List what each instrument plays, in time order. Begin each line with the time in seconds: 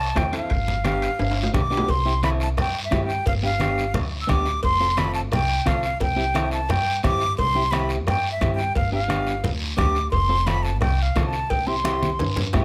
Already playing: flute A5
0.16 upright bass E2, clean electric guitar C4 E4 A4, flute G5, bombo low, bombo rim, high conga, high timbale, low timbale, short guiro
0.32 clean electric guitar C4 E4 A4, high timbale, short guiro
0.37 flute F5
0.50 upright bass G1, bombo low, high timbale, long guiro
0.68 low conga
0.85 clean electric guitar B3 D4 G4, bombo rim, high conga, high timbale, short guiro
1.02 high timbale, short guiro
1.19 upright bass G1, high timbale, long guiro
1.31 high timbale
1.43 low timbale
1.54 upright bass B1, clean electric guitar B3 D4 G4, flute D6, bombo low, bombo rim, high conga, low conga, short guiro
1.70 clean electric guitar B3 D4 G4, short guiro
1.77 low timbale
1.89 upright bass C2, flute C6, bombo low, cowbell, high conga, long guiro
2.05 clean electric guitar C4 E4 G4
2.23 clean electric guitar C4 E4 A4, flute B5, bombo rim, cowbell, high conga, short guiro
2.40 flute A5, short guiro
2.57 upright bass G2, flute G5, bombo rim, cowbell, high conga, low conga, long guiro
2.84 flute E5
2.91 upright bass G2, clean electric guitar C4 E4 G4, bombo low, bombo rim, cowbell, high conga, low timbale, short guiro
3.04 flute G5
3.09 short guiro
3.26 upright bass G1, flute F5, bombo low, cowbell, high conga, low conga, long guiro
3.43 clean electric guitar B3 D4 G4, flute F5
3.59 clean electric guitar B3 D4 G4, bombo rim, cowbell, high conga, short guiro
3.78 short guiro
3.94 upright bass D2, bombo rim, cowbell, high conga, low conga, long guiro
4.21 flute E6
4.27 upright bass D2, clean electric guitar B3 D4 G4, flute D6, bombo low, bombo rim, cowbell, high conga, short guiro
4.46 short guiro
4.63 upright bass F1, flute C6, bombo low, cowbell, high conga, long guiro
4.80 clean electric guitar C4 F4 A4
4.97 clean electric guitar C4 F4 A4, flute B5, bombo rim, cowbell, high conga, short guiro
5.14 flute A5, short guiro
5.32 upright bass C2, flute G5, bombo rim, cowbell, high conga, low conga, long guiro
5.66 upright bass C2, clean electric guitar C4 F4 A4, flute F5, bombo low, bombo rim, cowbell, high conga, short guiro
5.83 short guiro
6.00 upright bass C2, flute G5, bombo low, cowbell, high conga, low conga, long guiro
6.16 clean electric guitar C4 E4 G4
6.34 clean electric guitar C4 E4 A4, bombo rim, cowbell, high conga, short guiro
6.51 flute A5, short guiro
6.69 upright bass G2, flute G5, bombo rim, cowbell, high conga, low conga, long guiro
7.03 upright bass G2, clean electric guitar C4 E4 G4, flute D6, bombo low, bombo rim, cowbell, high conga, low conga, short guiro
7.20 short guiro
7.37 upright bass C2, flute C6, bombo low, cowbell, high conga, long guiro
7.55 clean electric guitar C4 E4 G4
7.71 clean electric guitar C4 E4 G4, flute B5, bombo rim, cowbell, high conga, short guiro
7.89 short guiro
8.07 upright bass G2, flute G5, bombo rim, cowbell, high conga, low conga, long guiro
8.32 flute E5
8.41 upright bass G2, clean electric guitar C4 E4 G4, bombo low, bombo rim, cowbell, high conga, short guiro
8.55 flute G5, short guiro
8.75 upright bass G1, flute F5, bombo low, cowbell, high conga, low conga, long guiro
8.92 clean electric guitar B3 D4 G4, flute F5
9.08 clean electric guitar B3 D4 G4, bombo rim, cowbell, high conga, short guiro
9.27 short guiro
9.44 upright bass D2, cowbell, high conga, low conga, long guiro
9.77 upright bass D2, clean electric guitar B3 D4 G4, flute D6, bombo low, bombo rim, cowbell, high conga, low conga, short guiro
9.95 short guiro
10.11 upright bass F1, flute C6, bombo low, cowbell, high conga, long guiro
10.29 clean electric guitar C4 F4 A4
10.46 clean electric guitar C4 F4 A4, flute B5, bombo rim, cowbell, high conga, short guiro
10.63 flute A5, short guiro
10.81 upright bass C2, flute G5, bombo rim, cowbell, high conga, low conga, long guiro
11.02 flute F5
11.16 upright bass C2, clean electric guitar C4 F4 A4, bombo low, bombo rim, cowbell, high conga, short guiro
11.26 flute A5
11.33 short guiro
11.50 upright bass C2, flute G5, bombo low, cowbell, high conga, long guiro
11.67 clean electric guitar C4 E4 G4, flute C6
11.84 clean electric guitar C4 E4 G4, bombo rim, cowbell, high conga, short guiro
12.03 high conga, short guiro
12.19 upright bass G2, cowbell, high conga, high timbale, long guiro
12.36 low conga, high timbale
12.53 upright bass G2, clean electric guitar C4 E4 G4, bombo low, bombo rim, cowbell, low conga, low timbale, short guiro